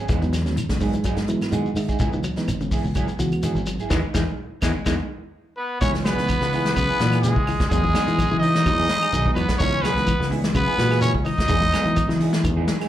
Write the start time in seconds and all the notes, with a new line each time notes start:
0.00 B3
0.09 E2 G#3 B3 D#4 G#4, kick, closed hi-hat, shekere
0.22 E3 F#3 G#3 B3 D#4, muted clean electric guitar stroke, closed hi-hat, shekere
0.33 F#3, muted clean electric guitar stroke, snare, closed hi-hat, claves, shekere
0.46 D#2 F#3 G#3 B3 C#4, snare, closed hi-hat, shekere
0.56 E3, muted clean electric guitar stroke, closed hi-hat, claves, shekere
0.69 C#3 F#3 G#3 B3 D#4, muted fingered electric bass stroke, muted clean electric guitar stroke, kick, snare, shekere
0.80 G#2 B3 D#4 G#4, kick, open hi-hat, shekere
0.93 E3, muted clean electric guitar stroke, closed hi-hat, shekere
1.03 F#3 B3 D#4 G#4, kick, closed hi-hat, claves, shekere
1.16 G#2, muted clean electric guitar stroke, snare, closed hi-hat, shekere
1.28 E3 F#3 G#3 B3 E4, muted clean electric guitar stroke, closed hi-hat, shekere
1.41 snare, closed hi-hat, claves, shekere
1.52 G#2 D#3 D#4 G#4 F#5, muted clean electric guitar stroke, closed hi-hat, shekere
1.66 shekere
1.76 G#2 D#3 E5, muted clean electric guitar stroke, open hi-hat, claves, shekere
1.88 D#4 G#4, kick, closed hi-hat, shekere
1.99 C#2 G#3 B3 E4 G#4, kick, closed hi-hat, shekere
2.12 C#2 E3 G#3 B3 D#4, muted clean electric guitar stroke, shekere
2.23 F#3, muted clean electric guitar stroke, closed hi-hat, claves, shekere
2.36 E3 G#3 B3 D#4, muted fingered electric bass stroke, snare, closed hi-hat, shekere
2.48 G#1 E3, muted clean electric guitar stroke, closed hi-hat, claves, shekere
2.60 C#3 E3 G#3 B3 C#4, muted clean electric guitar stroke, closed hi-hat, shekere
2.71 B3 E4 G#4, kick, open hi-hat, shekere
2.84 C#2, muted clean electric guitar stroke, shekere
2.94 F#3 B3 E4 G#4, kick, closed hi-hat, claves, shekere
3.08 muted clean electric guitar stroke, closed hi-hat, shekere
3.19 C#2 E3 G#3 B3 F#4, muted clean electric guitar stroke, closed hi-hat, shekere
3.32 closed hi-hat, claves, shekere
3.42 D#3 B3 E4 G#4, muted fingered electric bass stroke, closed hi-hat, shekere
3.55 G#1, shekere
3.66 F#3, muted clean electric guitar stroke, closed hi-hat, claves, shekere
3.79 E4 G#4, muted fingered electric bass stroke, closed hi-hat, shekere
3.90 E2 D#3 E3 G#3 B3 D#4 E4 G#4, kick, snare, claves, shekere
4.14 E2 D#3 E3 G#3 B3 D#4 E4 G#4, kick, snare, claves, shekere
4.62 E2 D#3 E3 G#3 B3 D#4 E4 G#4, kick, snare, claves, shekere
4.86 E2 D#3 E3 G#3 B3 D#4 E4 G#4, kick, snare, claves, shekere
5.57 B3 B4
5.81 C#2 E3 G#3 B3 C#4 D#4 E4 G#4 C#5, kick, closed hi-hat, shekere
5.94 E3, muted clean electric guitar stroke, snare
6.04 F#3 B3 F#4 G#4 B4, snare, closed hi-hat, claves, shekere
6.16 C#2 E3 G#3 B3 D#4, muted clean electric guitar stroke, snare, closed hi-hat
6.29 E3, muted clean electric guitar stroke, kick, closed hi-hat, claves, shekere
6.41 C#2 C#3, muted clean electric guitar stroke, snare
6.52 E3 G#3 B3 E4 G#4, open hi-hat, shekere
6.65 E3, muted clean electric guitar stroke, snare, closed hi-hat
6.75 C#3 F#3 B3 B4, muted clean electric guitar stroke, kick, closed hi-hat, claves, shekere
6.89 B3 E4 G#4, muted fingered electric bass stroke
7.00 A#2 E3 G#3 D#4 B4, muted clean electric guitar stroke, snare, closed hi-hat, shekere
7.12 E4 G#4, snare, closed hi-hat, claves
7.21 C#3 G#3 B3 E4 G#4, closed hi-hat, shekere
7.26 G#4
7.36 C#2, kick
7.47 E3, muted clean electric guitar stroke, open hi-hat, claves, shekere
7.60 C#2, kick, snare, closed hi-hat
7.69 E2 F#3 G#3 B3 D#4 G#4, kick, closed hi-hat, shekere
7.83 E3, muted clean electric guitar stroke, kick
7.94 F#3 G#3 B3 D#4 G#4, snare, closed hi-hat, claves, shekere
8.07 E3, muted clean electric guitar stroke, closed hi-hat
8.18 E3, muted clean electric guitar stroke, kick, closed hi-hat, claves, shekere
8.31 C#3 E3, muted clean electric guitar stroke
8.39 B3 D#4 D#5, open hi-hat, shekere
8.55 E3, muted clean electric guitar stroke, snare
8.65 E2 F#3, muted clean electric guitar stroke, kick, closed hi-hat, claves, shekere
8.78 B3 D#4 G#4
8.88 E3, muted clean electric guitar stroke, snare, closed hi-hat, shekere
9.01 D#4 G#4, closed hi-hat, claves
9.13 B1 D#3 B3 D#4 G#4, closed hi-hat, shekere
9.26 F#3 G#3 B3 D#4, kick
9.34 E2 F#3 B3 B4, closed hi-hat, claves, shekere
9.49 kick, snare
9.58 C#2 E3 G#3 B3 C#4 D#4 E4 G#4 C#5, kick, closed hi-hat, shekere
9.73 E3, muted clean electric guitar stroke
9.82 F#3 B3 F#4 G#4 B4, muted clean electric guitar stroke, snare, closed hi-hat, claves, shekere
9.86 B3
9.96 C#2 E3 G#3 B3 C#4, muted clean electric guitar stroke, snare, closed hi-hat
10.07 E3, muted clean electric guitar stroke, kick, closed hi-hat, claves, shekere
10.19 C#2 C#3, muted clean electric guitar stroke, snare
10.29 E3 G#3 B3 D#4 E4 G#4, open hi-hat, shekere
10.42 E3, muted clean electric guitar stroke, snare, closed hi-hat
10.54 C#3 F#3 B3 B4, muted clean electric guitar stroke, kick, closed hi-hat, claves, shekere
10.66 B3 E4 G#4, muted fingered electric bass stroke
10.77 A#2 E3 G#3 F#4 B4, muted clean electric guitar stroke, snare, closed hi-hat, shekere
10.89 E4 G#4, snare, closed hi-hat, claves
11.00 C#3 B3 C#4 E4 G#4 C#5, closed hi-hat, shekere
11.14 C#2, kick
11.24 E3 D#4 D#5, muted clean electric guitar stroke, open hi-hat, claves, shekere
11.38 C#2, kick, snare, closed hi-hat
11.48 E2 F#3 G#3 B3 D#4 G#4, kick, closed hi-hat, shekere
11.62 G#3, muted clean electric guitar stroke, kick
11.72 F#3 G#3 B3 D#4 G#4, snare, closed hi-hat, claves, shekere
11.84 E3, muted clean electric guitar stroke, closed hi-hat
11.96 E3, muted clean electric guitar stroke, kick, closed hi-hat, claves, shekere
12.08 C#3 E3, muted clean electric guitar stroke, snare
12.19 B3 D#4 G#4, open hi-hat, shekere
12.33 E3, muted clean electric guitar stroke, snare
12.43 E2 D#3, muted clean electric guitar stroke, kick, closed hi-hat, claves, shekere
12.57 B3 D#4 G#4
12.67 E3, muted clean electric guitar stroke, snare, closed hi-hat, shekere
12.80 D#4 G#4, snare, closed hi-hat, claves